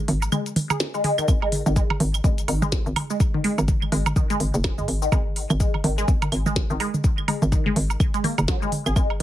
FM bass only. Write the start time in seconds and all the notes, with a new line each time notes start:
0.08 G#1
1.28 G#1
1.66 G#1
2.00 G#1
2.24 G#1
2.48 G#1
2.86 G#1
3.58 G#1
3.92 G#1
4.40 G#1
4.54 F#1
4.78 G#2
4.88 G#1
5.12 G#1
5.50 G#1
5.84 G#1
6.08 G#1
6.32 G#1
6.70 G#1
7.42 G#1
7.76 G#1
8.38 F#1
8.86 G#1
8.96 G#1